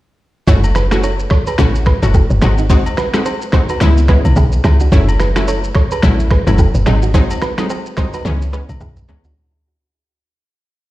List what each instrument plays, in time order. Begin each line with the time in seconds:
0.47 log drum bass F#1, synth pluck A3 C#4 E4 F#4, clean electric guitar A4 C#5, kick, shaker
0.64 high agogo, shaker
0.75 clean electric guitar G#4 B4, finger snap, cross-stick, shaker
0.91 synth pluck A3 C#4 E4 F#4, clean electric guitar F#4 A4, finger snap, cross-stick, shaker
1.03 clean electric guitar A4 C#5, high agogo, shaker
1.19 shaker
1.30 clean electric guitar A4 C#5, finger snap, kick, cross-stick
1.47 clean electric guitar G#4 B4, high agogo, shaker
1.58 log drum bass A1, synth pluck A3 C#4 E4 F#4, finger snap, kick, cross-stick, shaker
1.75 shaker
1.86 clean electric guitar G#4 B4, finger snap, kick, cross-stick
2.02 log drum bass F#1, synth pluck A3 C#4 E4 F#4, high agogo, shaker
2.14 clean electric guitar F#4 A4, kick, low woodblock, shaker
2.30 log drum bass F#1, shaker
2.42 log drum bass G#1, synth pluck G#3 C4 D#4 F#4, clean electric guitar D#4 G#4, finger snap, cross-stick, high agogo, shaker
2.58 clean electric guitar D#4 F#4, shaker
2.70 synth pluck G#3 C4 D#4 F#4, clean electric guitar G#4 C5, kick, shaker
2.86 high agogo, shaker
2.97 clean electric guitar F#4 B4, finger snap, cross-stick, shaker
3.14 synth pluck G#3 C4 D#4 F#4, clean electric guitar F4 A4, finger snap, cross-stick, shaker
3.25 clean electric guitar G#4 C5, high agogo, shaker
3.41 shaker
3.52 synth pluck G#3 C4 D#4 F#4, clean electric guitar G#4 C5, finger snap, kick, cross-stick
3.69 clean electric guitar F#4 B4, high agogo, shaker
3.80 log drum bass C#2, synth pluck G#3 B3 C#4 E4, finger snap, cross-stick, shaker
3.97 shaker
4.08 synth pluck G#3 B3 C#4 E4, clean electric guitar G#4 B4, finger snap, kick, cross-stick
4.25 log drum bass B1, high agogo, shaker
4.36 log drum bass B1, clean electric guitar E4 G#4, kick, low woodblock, shaker
4.52 shaker
4.64 log drum bass C#2, clean electric guitar E4 G#4, finger snap, cross-stick, high agogo, shaker
4.80 clean electric guitar D4 F#4, shaker
4.92 log drum bass F#1, synth pluck F#3 A3 C#4 E4, clean electric guitar A4 C#5, kick, shaker
5.08 high agogo, shaker
5.20 clean electric guitar G#4 B4, finger snap, cross-stick, shaker
5.36 synth pluck F#3 A3 C#4 E4, clean electric guitar F#4 A4, finger snap, cross-stick, shaker
5.48 clean electric guitar A4 C#5, high agogo, shaker
5.64 shaker
5.75 clean electric guitar A4 C#5, finger snap, kick, cross-stick
5.91 clean electric guitar G#4 B4, high agogo, shaker
6.02 log drum bass A1, synth pluck F#3 A3 C#4 E4, finger snap, kick, cross-stick, shaker
6.20 shaker
6.31 clean electric guitar G#4 B4, finger snap, kick, cross-stick
6.47 log drum bass F#1, synth pluck F#3 A3 C#4 E4, high agogo, shaker
6.58 clean electric guitar F#4 A4, kick, low woodblock, shaker
6.74 log drum bass F#1, shaker
6.86 log drum bass G#1, synth pluck F#3 G#3 C4 D#4, clean electric guitar D#4 G#4, finger snap, cross-stick, high agogo, shaker
7.02 clean electric guitar D#4 F#4, shaker
7.14 synth pluck F#3 G#3 C4 D#4, clean electric guitar G#4 C5, kick, shaker
7.30 high agogo, shaker
7.42 clean electric guitar F#4 B4, finger snap, cross-stick, shaker
7.58 synth pluck F#3 G#3 C4 D#4, clean electric guitar F4 A4, finger snap, cross-stick, shaker
7.70 clean electric guitar G#4 C5, high agogo, low woodblock, shaker
7.86 shaker
7.97 synth pluck F#3 G#3 C4 D#4, clean electric guitar G#4 C5, finger snap, kick, cross-stick, shaker
8.13 clean electric guitar F#4 B4, high agogo, shaker
8.25 log drum bass C#2, synth pluck E3 G#3 B3 C#4, high tom, shaker
8.42 shaker
8.53 synth pluck E3 G#3 B3 C#4, clean electric guitar G#4 B4, shaker
8.69 log drum bass B1, mid tom, high agogo, shaker
8.80 log drum bass B1, clean electric guitar E4 G#4, kick, mid tom, low woodblock, shaker
8.96 mid tom, shaker
9.08 log drum bass C#2, synth pluck E3 G#3 B3 C#4, clean electric guitar E4 G#4, floor tom, high agogo, shaker
9.24 clean electric guitar D4 F#4, floor tom, shaker